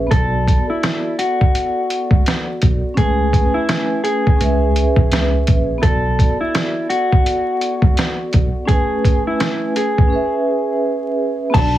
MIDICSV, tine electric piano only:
0, 0, Header, 1, 2, 480
1, 0, Start_track
1, 0, Tempo, 714286
1, 77, Time_signature, 4, 2, 24, 8
1, 7916, End_track
2, 0, Start_track
2, 0, Title_t, "Tine electric piano"
2, 0, Program_c, 0, 4
2, 79, Note_on_c, 0, 35, 103
2, 393, Note_off_c, 0, 35, 0
2, 1418, Note_on_c, 0, 37, 83
2, 1496, Note_off_c, 0, 37, 0
2, 1766, Note_on_c, 0, 35, 87
2, 1882, Note_off_c, 0, 35, 0
2, 1999, Note_on_c, 0, 37, 106
2, 2313, Note_off_c, 0, 37, 0
2, 2960, Note_on_c, 0, 37, 104
2, 3274, Note_off_c, 0, 37, 0
2, 3337, Note_on_c, 0, 35, 85
2, 3415, Note_off_c, 0, 35, 0
2, 3441, Note_on_c, 0, 37, 88
2, 3634, Note_off_c, 0, 37, 0
2, 3686, Note_on_c, 0, 34, 87
2, 3877, Note_off_c, 0, 34, 0
2, 3918, Note_on_c, 0, 35, 104
2, 4232, Note_off_c, 0, 35, 0
2, 5257, Note_on_c, 0, 37, 86
2, 5335, Note_off_c, 0, 37, 0
2, 5605, Note_on_c, 0, 35, 86
2, 5722, Note_off_c, 0, 35, 0
2, 7759, Note_on_c, 0, 35, 102
2, 7916, Note_off_c, 0, 35, 0
2, 7916, End_track
0, 0, End_of_file